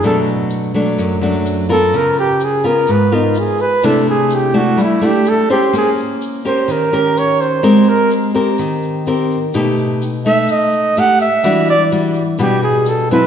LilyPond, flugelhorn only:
\new Staff \with { instrumentName = "Flugelhorn" } { \time 4/4 \key b \phrygian \tempo 4 = 126 a'8 r2. a'8 | ais'8 g'8 gis'8 ais'8 b'8 ees'8 gis'8 b'8 | a'8 aes'8 g'8 fis'8 e'8 g'8 a'8 g'8 | aes'8 r4 c''8 bes'4 des''8 c''8~ |
c''8 bes'8 r2. | r4. e''8 dis''4 fis''8 e''8~ | e''8 d''8 r4 g'8 aes'8 a'8 b'8 | }